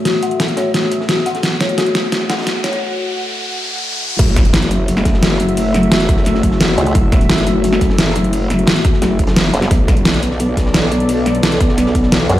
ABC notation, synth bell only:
X:1
M:4/4
L:1/8
Q:1/4=174
K:F#m
V:1 name="Synth bell"
F f z c F z F f | z c F z F f z c | z8 | z8 |
z8 | z8 | z8 | z8 |
z8 |]